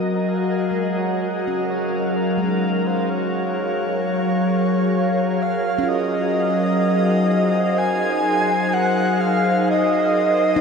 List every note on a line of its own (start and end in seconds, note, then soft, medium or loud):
0.00 10.61 F#3 medium
0.00 8.94 F#4 medium
0.00 10.61 G#4 medium
0.00 10.61 A#4 medium
0.00 0.30 D#5 medium
0.00 1.20 D#5 medium
0.00 0.51 A#5 medium
0.28 0.98 F5 medium
0.71 1.62 G#3 soft
0.97 1.23 C#5 medium
1.22 1.71 D#5 medium
1.27 8.93 F5 medium
1.47 2.38 C#4 medium
1.69 2.16 C#5 medium
2.16 2.88 A#4 medium
2.38 3.29 G#3 medium
2.43 3.31 C#4 soft
2.48 3.34 D#4 soft
2.86 3.11 C5 medium
3.09 5.43 C#5 loud
5.42 5.88 F5 medium
5.78 6.34 C#4 medium
5.83 6.36 F4 medium
5.88 7.79 D#5 loud
6.46 10.61 C5 medium
6.75 10.61 D#4 medium
7.78 8.75 G#5 loud
8.73 9.22 F#5 loud
9.20 9.68 F5 medium
9.69 10.61 D#5 medium
10.56 10.61 D#4 medium